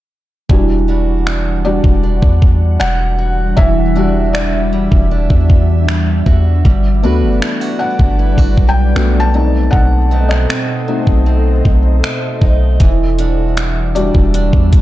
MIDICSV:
0, 0, Header, 1, 6, 480
1, 0, Start_track
1, 0, Key_signature, 1, "minor"
1, 0, Tempo, 769231
1, 309, Time_signature, 4, 2, 24, 8
1, 9245, End_track
2, 0, Start_track
2, 0, Title_t, "Ambient pad"
2, 0, Program_c, 0, 92
2, 308, Note_on_c, 0, 62, 73
2, 309, Note_on_c, 0, 52, 80
2, 309, Note_on_c, 0, 78, 88
2, 310, Note_on_c, 0, 55, 72
2, 2210, Note_off_c, 0, 78, 0
2, 2232, Note_on_c, 0, 76, 88
2, 4124, Note_off_c, 0, 52, 0
2, 4124, Note_off_c, 0, 55, 0
2, 4131, Note_off_c, 0, 76, 0
2, 4149, Note_on_c, 0, 55, 79
2, 4149, Note_on_c, 0, 71, 75
2, 4149, Note_on_c, 0, 74, 85
2, 5803, Note_off_c, 0, 62, 0
2, 5812, Note_off_c, 0, 55, 0
2, 5812, Note_off_c, 0, 71, 0
2, 5812, Note_off_c, 0, 74, 0
2, 5828, Note_on_c, 0, 47, 80
2, 5828, Note_on_c, 0, 72, 71
2, 5829, Note_on_c, 0, 69, 74
2, 5829, Note_on_c, 0, 75, 86
2, 7967, Note_off_c, 0, 47, 0
2, 7967, Note_off_c, 0, 69, 0
2, 7967, Note_off_c, 0, 72, 0
2, 7967, Note_off_c, 0, 75, 0
2, 7992, Note_on_c, 0, 52, 80
2, 7992, Note_on_c, 0, 55, 72
2, 7992, Note_on_c, 0, 62, 76
2, 7993, Note_on_c, 0, 76, 86
2, 9245, Note_off_c, 0, 52, 0
2, 9245, Note_off_c, 0, 55, 0
2, 9245, Note_off_c, 0, 62, 0
2, 9245, Note_off_c, 0, 76, 0
2, 9245, End_track
3, 0, Start_track
3, 0, Title_t, "Felt piano"
3, 0, Program_c, 1, 0
3, 308, Note_on_c, 1, 55, 52
3, 312, Note_on_c, 1, 62, 48
3, 316, Note_on_c, 1, 66, 58
3, 413, Control_c, 1, 64, 127
3, 1021, Note_off_c, 1, 55, 0
3, 1023, Note_off_c, 1, 62, 0
3, 1026, Note_off_c, 1, 66, 0
3, 1028, Note_on_c, 1, 74, 85
3, 1030, Note_on_c, 1, 55, 44
3, 1033, Note_on_c, 1, 62, 42
3, 1035, Note_on_c, 1, 66, 51
3, 1246, Note_off_c, 1, 55, 0
3, 1247, Note_off_c, 1, 62, 0
3, 1248, Note_off_c, 1, 66, 0
3, 1745, Note_on_c, 1, 78, 103
3, 1770, Note_off_c, 1, 74, 0
3, 2202, Note_off_c, 1, 78, 0
3, 2225, Note_on_c, 1, 76, 91
3, 2468, Note_on_c, 1, 55, 51
3, 2473, Note_on_c, 1, 62, 47
3, 2477, Note_on_c, 1, 66, 57
3, 2703, Note_on_c, 1, 74, 75
3, 2721, Note_off_c, 1, 76, 0
3, 2788, Note_off_c, 1, 55, 0
3, 2790, Note_off_c, 1, 62, 0
3, 2792, Note_off_c, 1, 66, 0
3, 3881, Note_off_c, 1, 74, 0
3, 4157, Control_c, 1, 64, 0
3, 4249, Control_c, 1, 64, 127
3, 4387, Note_on_c, 1, 57, 53
3, 4391, Note_on_c, 1, 59, 47
3, 4395, Note_on_c, 1, 66, 58
3, 4862, Note_on_c, 1, 78, 83
3, 5083, Note_off_c, 1, 57, 0
3, 5085, Note_off_c, 1, 59, 0
3, 5087, Note_off_c, 1, 66, 0
3, 5420, Note_on_c, 1, 79, 90
3, 5442, Note_off_c, 1, 78, 0
3, 5590, Note_on_c, 1, 57, 47
3, 5593, Note_on_c, 1, 59, 42
3, 5594, Note_on_c, 1, 66, 54
3, 5722, Note_off_c, 1, 79, 0
3, 5739, Note_on_c, 1, 81, 101
3, 5805, Note_off_c, 1, 57, 0
3, 5807, Note_off_c, 1, 59, 0
3, 5807, Note_off_c, 1, 66, 0
3, 5827, Note_on_c, 1, 57, 52
3, 5831, Note_on_c, 1, 60, 50
3, 5834, Note_on_c, 1, 63, 62
3, 5838, Control_c, 1, 64, 0
3, 5941, Control_c, 1, 64, 127
3, 6057, Note_on_c, 1, 78, 88
3, 6074, Note_off_c, 1, 81, 0
3, 6398, Note_off_c, 1, 78, 0
3, 6419, Note_on_c, 1, 75, 74
3, 6523, Note_off_c, 1, 57, 0
3, 6525, Note_off_c, 1, 60, 0
3, 6526, Note_off_c, 1, 63, 0
3, 6788, Note_on_c, 1, 57, 45
3, 6791, Note_on_c, 1, 60, 41
3, 6793, Note_on_c, 1, 63, 47
3, 7004, Note_off_c, 1, 57, 0
3, 7006, Note_off_c, 1, 60, 0
3, 7007, Note_off_c, 1, 63, 0
3, 7359, Note_off_c, 1, 75, 0
3, 7996, Control_c, 1, 64, 0
3, 8118, Control_c, 1, 64, 127
3, 8705, Note_on_c, 1, 74, 83
3, 8709, Note_on_c, 1, 55, 51
3, 8713, Note_on_c, 1, 62, 50
3, 8717, Note_on_c, 1, 66, 57
3, 9245, Note_off_c, 1, 55, 0
3, 9245, Note_off_c, 1, 62, 0
3, 9245, Note_off_c, 1, 66, 0
3, 9245, Note_off_c, 1, 74, 0
3, 9245, End_track
4, 0, Start_track
4, 0, Title_t, "Steel-string acoustic guitar"
4, 0, Program_c, 2, 25
4, 309, Note_on_c, 2, 52, 81
4, 549, Note_on_c, 2, 55, 53
4, 553, Note_on_c, 2, 62, 55
4, 557, Note_on_c, 2, 66, 62
4, 788, Note_off_c, 2, 62, 0
4, 790, Note_on_c, 2, 62, 60
4, 1028, Note_off_c, 2, 55, 0
4, 1030, Note_on_c, 2, 55, 58
4, 1266, Note_off_c, 2, 62, 0
4, 1269, Note_on_c, 2, 62, 59
4, 1745, Note_off_c, 2, 55, 0
4, 1748, Note_on_c, 2, 55, 57
4, 1985, Note_off_c, 2, 66, 0
4, 1988, Note_on_c, 2, 66, 64
4, 2218, Note_off_c, 2, 52, 0
4, 2226, Note_on_c, 2, 52, 84
4, 2465, Note_off_c, 2, 55, 0
4, 2467, Note_on_c, 2, 55, 56
4, 2468, Note_off_c, 2, 62, 0
4, 2471, Note_on_c, 2, 62, 59
4, 2473, Note_off_c, 2, 66, 0
4, 2475, Note_on_c, 2, 66, 61
4, 2707, Note_off_c, 2, 62, 0
4, 2709, Note_on_c, 2, 62, 56
4, 2947, Note_off_c, 2, 55, 0
4, 2950, Note_on_c, 2, 55, 60
4, 3188, Note_off_c, 2, 62, 0
4, 3190, Note_on_c, 2, 62, 64
4, 3667, Note_off_c, 2, 55, 0
4, 3670, Note_on_c, 2, 55, 56
4, 3906, Note_off_c, 2, 66, 0
4, 3909, Note_on_c, 2, 66, 65
4, 4147, Note_off_c, 2, 52, 0
4, 4148, Note_off_c, 2, 55, 0
4, 4150, Note_on_c, 2, 55, 83
4, 4387, Note_off_c, 2, 62, 0
4, 4389, Note_on_c, 2, 62, 61
4, 4391, Note_off_c, 2, 66, 0
4, 4393, Note_on_c, 2, 66, 57
4, 4398, Note_on_c, 2, 71, 62
4, 4626, Note_off_c, 2, 66, 0
4, 4628, Note_on_c, 2, 64, 61
4, 4749, Note_off_c, 2, 64, 0
4, 4749, Note_on_c, 2, 66, 52
4, 4863, Note_off_c, 2, 62, 0
4, 4870, Note_on_c, 2, 62, 56
4, 5108, Note_off_c, 2, 66, 0
4, 5111, Note_on_c, 2, 64, 59
4, 5230, Note_off_c, 2, 64, 0
4, 5230, Note_on_c, 2, 66, 51
4, 5582, Note_off_c, 2, 62, 0
4, 5589, Note_on_c, 2, 62, 59
4, 5828, Note_on_c, 2, 47, 74
4, 5877, Note_off_c, 2, 55, 0
4, 5877, Note_off_c, 2, 62, 0
4, 5877, Note_off_c, 2, 66, 0
4, 6062, Note_off_c, 2, 47, 0
4, 6069, Note_on_c, 2, 47, 86
4, 6310, Note_on_c, 2, 57, 57
4, 6313, Note_on_c, 2, 60, 57
4, 6317, Note_on_c, 2, 63, 61
4, 6328, Note_off_c, 2, 71, 0
4, 6540, Note_off_c, 2, 60, 0
4, 6548, Note_on_c, 2, 60, 59
4, 6781, Note_off_c, 2, 57, 0
4, 6788, Note_on_c, 2, 57, 55
4, 7020, Note_off_c, 2, 60, 0
4, 7027, Note_on_c, 2, 60, 59
4, 7500, Note_off_c, 2, 57, 0
4, 7508, Note_on_c, 2, 57, 59
4, 7741, Note_off_c, 2, 63, 0
4, 7749, Note_on_c, 2, 63, 65
4, 7989, Note_off_c, 2, 47, 0
4, 7990, Note_on_c, 2, 52, 78
4, 8036, Note_off_c, 2, 57, 0
4, 8036, Note_off_c, 2, 60, 0
4, 8037, Note_off_c, 2, 63, 0
4, 8229, Note_on_c, 2, 55, 59
4, 8233, Note_on_c, 2, 62, 59
4, 8237, Note_on_c, 2, 66, 60
4, 8468, Note_off_c, 2, 62, 0
4, 8470, Note_on_c, 2, 62, 57
4, 8705, Note_off_c, 2, 55, 0
4, 8708, Note_on_c, 2, 55, 59
4, 8946, Note_off_c, 2, 62, 0
4, 8948, Note_on_c, 2, 62, 62
4, 9245, Note_off_c, 2, 52, 0
4, 9245, Note_off_c, 2, 55, 0
4, 9245, Note_off_c, 2, 62, 0
4, 9245, Note_off_c, 2, 66, 0
4, 9245, End_track
5, 0, Start_track
5, 0, Title_t, "808-style bass"
5, 0, Program_c, 3, 38
5, 310, Note_on_c, 3, 28, 100
5, 1124, Note_off_c, 3, 28, 0
5, 1148, Note_on_c, 3, 28, 97
5, 1379, Note_off_c, 3, 28, 0
5, 1389, Note_on_c, 3, 40, 95
5, 1734, Note_off_c, 3, 40, 0
5, 1751, Note_on_c, 3, 28, 100
5, 2211, Note_off_c, 3, 28, 0
5, 2231, Note_on_c, 3, 28, 99
5, 3045, Note_off_c, 3, 28, 0
5, 3068, Note_on_c, 3, 28, 100
5, 3299, Note_off_c, 3, 28, 0
5, 3309, Note_on_c, 3, 40, 92
5, 3885, Note_off_c, 3, 40, 0
5, 3908, Note_on_c, 3, 40, 97
5, 4139, Note_off_c, 3, 40, 0
5, 4150, Note_on_c, 3, 31, 103
5, 4392, Note_on_c, 3, 38, 98
5, 4401, Note_off_c, 3, 31, 0
5, 4509, Note_on_c, 3, 31, 98
5, 4519, Note_off_c, 3, 38, 0
5, 4623, Note_off_c, 3, 31, 0
5, 4988, Note_on_c, 3, 31, 93
5, 5219, Note_off_c, 3, 31, 0
5, 5229, Note_on_c, 3, 31, 98
5, 5344, Note_off_c, 3, 31, 0
5, 5351, Note_on_c, 3, 35, 104
5, 5580, Note_off_c, 3, 35, 0
5, 5590, Note_on_c, 3, 35, 101
5, 6050, Note_off_c, 3, 35, 0
5, 6071, Note_on_c, 3, 35, 97
5, 6531, Note_off_c, 3, 35, 0
5, 6909, Note_on_c, 3, 35, 98
5, 7254, Note_off_c, 3, 35, 0
5, 7272, Note_on_c, 3, 35, 105
5, 7501, Note_off_c, 3, 35, 0
5, 7748, Note_on_c, 3, 35, 98
5, 7979, Note_off_c, 3, 35, 0
5, 7989, Note_on_c, 3, 28, 101
5, 8804, Note_off_c, 3, 28, 0
5, 8828, Note_on_c, 3, 28, 99
5, 9059, Note_off_c, 3, 28, 0
5, 9068, Note_on_c, 3, 40, 93
5, 9245, Note_off_c, 3, 40, 0
5, 9245, End_track
6, 0, Start_track
6, 0, Title_t, "Drums"
6, 309, Note_on_c, 9, 36, 106
6, 371, Note_off_c, 9, 36, 0
6, 791, Note_on_c, 9, 26, 117
6, 853, Note_off_c, 9, 26, 0
6, 1147, Note_on_c, 9, 36, 89
6, 1210, Note_off_c, 9, 36, 0
6, 1388, Note_on_c, 9, 36, 92
6, 1450, Note_off_c, 9, 36, 0
6, 1511, Note_on_c, 9, 36, 96
6, 1573, Note_off_c, 9, 36, 0
6, 1753, Note_on_c, 9, 26, 110
6, 1816, Note_off_c, 9, 26, 0
6, 2230, Note_on_c, 9, 36, 99
6, 2292, Note_off_c, 9, 36, 0
6, 2713, Note_on_c, 9, 26, 113
6, 2775, Note_off_c, 9, 26, 0
6, 3068, Note_on_c, 9, 36, 87
6, 3130, Note_off_c, 9, 36, 0
6, 3308, Note_on_c, 9, 36, 83
6, 3370, Note_off_c, 9, 36, 0
6, 3430, Note_on_c, 9, 36, 90
6, 3492, Note_off_c, 9, 36, 0
6, 3672, Note_on_c, 9, 26, 108
6, 3735, Note_off_c, 9, 26, 0
6, 3908, Note_on_c, 9, 36, 94
6, 3970, Note_off_c, 9, 36, 0
6, 4149, Note_on_c, 9, 36, 107
6, 4212, Note_off_c, 9, 36, 0
6, 4632, Note_on_c, 9, 26, 114
6, 4694, Note_off_c, 9, 26, 0
6, 4987, Note_on_c, 9, 36, 86
6, 5050, Note_off_c, 9, 36, 0
6, 5227, Note_on_c, 9, 36, 87
6, 5290, Note_off_c, 9, 36, 0
6, 5350, Note_on_c, 9, 36, 89
6, 5412, Note_off_c, 9, 36, 0
6, 5592, Note_on_c, 9, 26, 105
6, 5655, Note_off_c, 9, 26, 0
6, 6069, Note_on_c, 9, 36, 101
6, 6132, Note_off_c, 9, 36, 0
6, 6433, Note_on_c, 9, 26, 66
6, 6495, Note_off_c, 9, 26, 0
6, 6553, Note_on_c, 9, 26, 109
6, 6615, Note_off_c, 9, 26, 0
6, 6908, Note_on_c, 9, 36, 82
6, 6970, Note_off_c, 9, 36, 0
6, 7270, Note_on_c, 9, 36, 90
6, 7332, Note_off_c, 9, 36, 0
6, 7513, Note_on_c, 9, 26, 109
6, 7575, Note_off_c, 9, 26, 0
6, 7747, Note_on_c, 9, 36, 89
6, 7809, Note_off_c, 9, 36, 0
6, 7987, Note_on_c, 9, 42, 64
6, 7988, Note_on_c, 9, 36, 107
6, 8049, Note_off_c, 9, 42, 0
6, 8051, Note_off_c, 9, 36, 0
6, 8228, Note_on_c, 9, 42, 62
6, 8290, Note_off_c, 9, 42, 0
6, 8468, Note_on_c, 9, 42, 65
6, 8470, Note_on_c, 9, 26, 111
6, 8530, Note_off_c, 9, 42, 0
6, 8533, Note_off_c, 9, 26, 0
6, 8711, Note_on_c, 9, 42, 57
6, 8773, Note_off_c, 9, 42, 0
6, 8827, Note_on_c, 9, 36, 88
6, 8889, Note_off_c, 9, 36, 0
6, 8949, Note_on_c, 9, 42, 69
6, 9011, Note_off_c, 9, 42, 0
6, 9067, Note_on_c, 9, 36, 92
6, 9129, Note_off_c, 9, 36, 0
6, 9189, Note_on_c, 9, 36, 93
6, 9189, Note_on_c, 9, 42, 67
6, 9245, Note_off_c, 9, 36, 0
6, 9245, Note_off_c, 9, 42, 0
6, 9245, End_track
0, 0, End_of_file